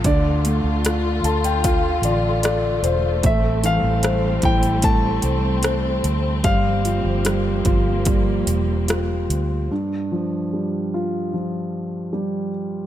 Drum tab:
HH |x-x-x-xxx-x-x-x-|x-x-x-xxx-x-x-x-|x-x-x-x-x-x-x-x-|----------------|
SD |----r-------r---|----r-------r---|----r-------r---|----------------|
BD |o-------o-------|o-----o-o-------|o-----o-o-------|----------------|